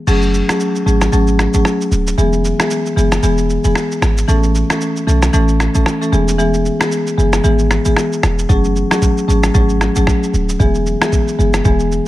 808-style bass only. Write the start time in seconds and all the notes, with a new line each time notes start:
0.07 F#1
0.86 G#1
1.13 G#1
1.54 G#1
1.92 D1
2.18 E1
2.97 F#1
3.23 E1
3.64 E1
4.02 G#1
4.28 A1
5.07 B1
5.33 A1
5.75 A1
6.12 E1
7.18 F#1
7.44 G#1
7.86 G#1
8.23 E1
8.49 F#1
9.28 G#1
9.55 G#1
9.96 G#1
10.34 D1
10.60 E1
11.39 F#1
11.65 E1